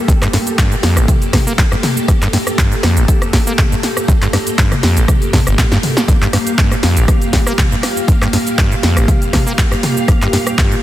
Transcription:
Already playing: A#3 G4 A4
0.08 G2, kick, closed hi-hat, shaker
0.22 G2, cross-stick, clap, shaker
0.33 G2, snare, open hi-hat
0.47 closed hi-hat, shaker
0.58 G2, kick, cross-stick, clap, closed hi-hat, shaker
0.72 C3, closed hi-hat, shaker
0.83 F2, snare, open hi-hat
0.97 G1, cross-stick, closed hi-hat, shaker
1.08 kick, closed hi-hat, mid tom, shaker
1.22 closed hi-hat, shaker
1.33 G2, kick, cross-stick, snare, open hi-hat, mid tom
1.47 A#3, shaker
1.58 G2, kick, clap, closed hi-hat, shaker
1.72 G2, cross-stick, shaker
1.83 snare, open hi-hat, mid tom
1.97 shaker
2.08 G2, kick, cross-stick, closed hi-hat, shaker
2.22 G2, clap, shaker
2.33 G2, snare, open hi-hat
2.47 cross-stick, closed hi-hat, shaker
2.58 G2, kick, clap, closed hi-hat, shaker
2.72 C3, closed hi-hat, shaker
2.83 F2, cross-stick, snare, open hi-hat
2.97 G1, closed hi-hat, shaker
3.08 kick, closed hi-hat, shaker
3.22 cross-stick, closed hi-hat, shaker
3.33 G2, kick, snare, open hi-hat
3.47 A#3, shaker
3.58 G2, kick, cross-stick, clap, closed hi-hat, mid tom, shaker
3.72 G2, shaker
3.83 snare, open hi-hat
3.97 cross-stick, shaker
4.08 G2, kick, closed hi-hat, shaker
4.22 G2, clap, closed hi-hat, shaker
4.33 G2, cross-stick, snare, open hi-hat
4.47 closed hi-hat, shaker
4.58 G2, kick, clap, closed hi-hat, shaker
4.72 C3, cross-stick, closed hi-hat, mid tom, shaker
4.83 F2, snare, open hi-hat
4.97 G1, closed hi-hat, shaker
5.08 kick, cross-stick, closed hi-hat, mid tom, shaker
5.22 closed hi-hat, shaker
5.33 G2, kick, snare, open hi-hat, mid tom
5.47 G1, cross-stick, closed hi-hat, shaker
5.58 A#2, kick, snare, clap, closed hi-hat, shaker
5.72 G2, snare, closed hi-hat, shaker
5.83 open hi-hat, mid tom
5.97 snare, shaker
6.08 G2 F5, kick, closed hi-hat, shaker
6.22 G2, clap, shaker
6.33 G2, cross-stick, snare, open hi-hat
6.47 closed hi-hat, shaker
6.58 G2, kick, clap, closed hi-hat, shaker
6.72 C3, cross-stick, closed hi-hat, shaker
6.83 F2, snare, open hi-hat
6.97 G1, closed hi-hat, shaker
7.08 kick, cross-stick, closed hi-hat, shaker
7.22 closed hi-hat, shaker
7.33 G2, kick, snare, open hi-hat
7.47 A#3, cross-stick, shaker
7.58 G2, kick, clap, closed hi-hat, mid tom, shaker
7.72 G2, shaker
7.83 cross-stick, snare, open hi-hat
7.97 shaker
8.08 G2, kick, closed hi-hat, shaker
8.22 G2, cross-stick, clap, shaker
8.33 G2, snare, open hi-hat
8.47 closed hi-hat, shaker
8.58 G2, kick, cross-stick, clap, closed hi-hat, shaker
8.72 C3, closed hi-hat, shaker
8.83 F2, snare, open hi-hat
8.97 G1, cross-stick, closed hi-hat, shaker
9.08 kick, closed hi-hat, mid tom, shaker
9.22 closed hi-hat, shaker
9.33 G2, kick, cross-stick, snare, open hi-hat, mid tom
9.47 A#3, shaker
9.58 G2, kick, clap, closed hi-hat, shaker
9.72 G2, cross-stick, shaker
9.83 snare, open hi-hat, mid tom
9.97 shaker
10.08 G2, kick, cross-stick, closed hi-hat, shaker
10.22 G2, clap, shaker
10.33 G2, snare, open hi-hat
10.47 cross-stick, closed hi-hat, shaker
10.58 G2, kick, clap, closed hi-hat, shaker
10.72 C3, closed hi-hat, shaker

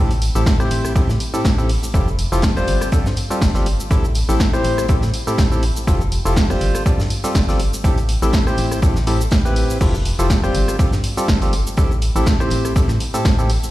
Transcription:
Already playing: A1 A2 C4 E4 G4 A4
0.11 open hi-hat, shaker
0.22 closed hi-hat, open hi-hat
0.35 A1 A2 C4 E4 G4 A4, shaker
0.46 kick, snare, closed hi-hat, shaker
0.60 A2 C4 E4 G4 C5, cross-stick, shaker
0.71 A1, closed hi-hat, open hi-hat
0.85 cross-stick, shaker
0.96 A2 C4 E4 G4 A4, kick, closed hi-hat, shaker
1.09 A2, snare, shaker
1.20 closed hi-hat, open hi-hat
1.34 A2 C4 E4 G4 A4, shaker
1.45 A1, kick, snare, closed hi-hat, shaker
1.58 A2 C4 E4 G4 A4, shaker
1.69 open hi-hat
1.83 shaker
1.94 F1 F3 E4 F4 G4 A4, kick, closed hi-hat, shaker
2.08 shaker
2.19 closed hi-hat, open hi-hat
2.32 F1 F3 E4 F4 G4 A4, shaker
2.42 kick, snare, closed hi-hat, shaker
2.57 G3 C4 F4 G4 C5, cross-stick, shaker
2.67 G1, closed hi-hat, open hi-hat
2.81 cross-stick, shaker
2.92 G3 C4 F4 G4 A4, kick, closed hi-hat, shaker
3.06 G2, snare, shaker
3.17 closed hi-hat, open hi-hat
3.30 G3 C4 F4 G4 A4, shaker
3.42 G1, kick, snare, closed hi-hat, shaker
3.54 G3 C4 F4 G4 A4, snare, shaker
3.66 closed hi-hat, open hi-hat
3.80 shaker
3.91 A1 A2 C4 E4 G4 A4, kick, closed hi-hat, shaker
4.05 shaker
4.15 closed hi-hat, open hi-hat
4.29 A1 A2 C4 E4 G4 A4, shaker
4.40 kick, snare, closed hi-hat, shaker
4.53 A2 C4 E4 G4 C5, cross-stick, shaker
4.64 A1, closed hi-hat, open hi-hat
4.78 cross-stick, shaker
4.88 A2 C4 E4 G4 A4, kick, closed hi-hat, shaker
5.02 A2, snare, shaker
5.14 closed hi-hat, open hi-hat
5.27 A2 C4 E4 G4 A4, shaker
5.38 A1, kick, snare, closed hi-hat, shaker
5.52 A2 C4 E4 G4 A4, shaker
5.63 open hi-hat
5.77 shaker
5.87 F1 F3 E4 F4 G4 A4, kick, closed hi-hat, shaker
6.01 shaker
6.12 closed hi-hat, open hi-hat
6.25 F1 F3 E4 F4 G4 A4, shaker
6.36 kick, snare, closed hi-hat, shaker
6.50 G3 C4 F4 G4 C5, cross-stick, shaker
6.61 G1, open hi-hat
6.75 cross-stick, shaker
6.86 G3 C4 F4 G4 A4, kick, closed hi-hat, shaker
6.99 G2, snare, shaker
7.10 closed hi-hat, open hi-hat
7.24 G3 C4 F4 G4 A4, shaker
7.35 G1, kick, snare, closed hi-hat, shaker
7.49 G3 C4 F4 G4 A4, snare, shaker
7.59 closed hi-hat, open hi-hat
7.73 shaker
7.84 A1 A2 C4 E4 G4 A4, kick, closed hi-hat, shaker
7.98 open hi-hat, shaker
8.09 closed hi-hat, open hi-hat
8.22 A1 A2 C4 E4 G4 A4, shaker
8.33 kick, snare, closed hi-hat, shaker
8.47 A2 C4 E4 G4 C5, cross-stick, shaker
8.58 A1, closed hi-hat, open hi-hat
8.71 cross-stick, shaker
8.82 A2 C4 E4 G4 A4, kick, closed hi-hat, shaker
8.96 A1, snare, shaker
9.07 A2 C4 E4 G4 A4, closed hi-hat, open hi-hat
9.21 shaker
9.31 A1, kick, snare, closed hi-hat, shaker
9.45 A2 C4 E4 G4 B4, shaker
9.56 open hi-hat
9.70 shaker
9.81 F1 F3 E4 F4 G4 A4, kick, closed hi-hat, crash, shaker
9.95 shaker
10.05 closed hi-hat, open hi-hat
10.19 F1 F3 E4 F4 G4 A4, shaker
10.30 kick, snare, closed hi-hat, shaker
10.44 G3 C4 F4 G4 C5, cross-stick, shaker
10.55 G1, closed hi-hat, open hi-hat
10.68 cross-stick, shaker
10.79 G3 C4 F4 G4 A4, kick, closed hi-hat, shaker
10.92 G2, snare, shaker
11.04 closed hi-hat, open hi-hat
11.17 G3 C4 F4 G4 A4, shaker
11.28 G1, kick, snare, closed hi-hat, shaker
11.41 G3 C4 F4 G4 A4, snare, shaker
11.53 closed hi-hat, open hi-hat
11.67 shaker
11.77 A1 A2 C4 E4 G4 A4, kick, closed hi-hat, shaker
11.91 shaker
12.02 closed hi-hat, open hi-hat
12.15 A1 A2 C4 E4 G4 A4, shaker
12.26 kick, snare, closed hi-hat, shaker
12.40 A2 C4 E4 G4 C5, cross-stick, shaker
12.50 A1, closed hi-hat, open hi-hat
12.65 cross-stick, shaker
12.76 A2 C4 E4 G4 A4, kick, closed hi-hat, shaker
12.88 A2, snare, shaker
13.00 closed hi-hat, open hi-hat
13.14 A2 C4 E4 G4 A4, shaker
13.25 A1, kick, snare, closed hi-hat, shaker
13.39 A2 C4 E4 G4 A4, shaker
13.50 open hi-hat
13.64 shaker

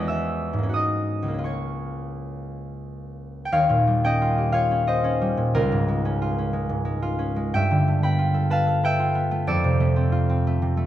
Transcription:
Already playing: E2 G#3 C#4 C#5 D#5 C#6 D#6
0.02 F#4
0.08 E5 E6
0.53 G#2
0.58 A#3
0.63 C#4
0.69 F#4
0.74 D#5 D#6
1.23 C#2
1.28 A#3
1.34 C#4
1.38 F4
1.44 C#5 C#6
3.45 G5
3.52 D#2 C#5 F5
3.70 A#2
3.87 G3
4.04 C#4 D#5 G5
4.22 F4
4.38 G4
4.52 F4 C#5 F5
4.71 C#4
4.87 F4 C5 D#5
5.04 C#4
5.21 G3
5.37 A#2
5.54 C#2 F4 A#4
5.72 G#2
5.88 G#3
6.05 C#4
6.22 F4
6.38 C#4
6.53 G#3
6.69 G#2
6.85 G#3
7.02 F4
7.19 C#4
7.36 G#3
7.54 G2 E5 G5
7.71 D3
7.88 A3
8.03 B3 G5 B5
8.19 F4
8.34 A4
8.50 B4 F5 A5
8.67 A4
8.84 B4 E5 G5
8.99 F4
9.15 B3
9.31 A3
9.47 F2 A4 D5
9.64 C3
9.80 A3
9.96 C4
10.12 F4
10.30 C4
10.47 A3
10.62 C3
10.77 A3

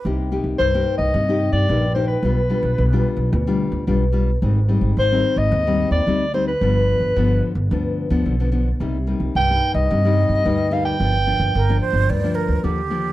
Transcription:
0.05 C2 C3 A#3 D#4 G4
0.32 A#3 D#4 G4
0.44 C2
0.58 C2 G2 C5
0.74 A#3 D#4 G4
0.98 C2 D#5
1.14 G2 C3
1.28 A#3 D#4 G4
1.52 G2 D5
1.69 A#1 G2 A#3 D#4 G4
1.95 A#3 D#4 G4 C5
2.07 B4
2.23 B1 B2 G3 D4 F4
2.49 G3 D4 F4
2.63 B1
2.78 B1 B2
2.93 G3 D4 F4
3.17 B1
3.33 D2 B2
3.47 G3 D4 F4
3.72 D2
3.87 B1 B2 G3 D4 F4
4.12 G3 D4 F4
4.42 G#1 G#2 G3 C4 D#4
4.68 G3 C4 D#4
4.81 G#1
4.97 G#1 D#3 C5
5.12 G3 C4 D#4
5.36 G#1 D#5
5.52 D#2 G#2
5.67 G3 C4 D#4
5.91 D#2 D5
6.07 D2 G3 C4 D#4
6.33 G3 C4 D#4 C5
6.47 B4
6.61 G1 G2 F3 B3 D4
7.00 G1
7.16 G1 D3 F3 B3 D4
7.55 G1
7.71 D2 G2 F3 B3 D4
8.10 D2 F3 B3 D4
8.26 B1 D3
8.40 F3 B3 D4
8.52 F3 B3 D4
8.80 C2 C3 G3 A#3 D#4
9.07 G3 A#3 D#4
9.20 C2
9.35 C2 G2 G5
9.50 G3 A#3 D#4
9.74 C2 D#5
9.91 G2 C3
10.05 G3 A#3 D#4
10.29 G2
10.45 D2 G2 G3 A#3 D#4
10.71 G3 A#3 D#4 F5
10.85 G5
11.00 G1 G2 F3 A#3 D4
11.27 F3 A#3 D4
11.40 G1
11.55 G1 D3 A#4
11.69 F3 A#3 D4
11.81 C5
11.93 G1
12.09 D2 G2 D5
12.24 F3 A#3 D4
12.35 A#4
12.48 D2
12.64 D#2 D3 F3 A#3 D4 G4
12.90 F3 A#3 D4

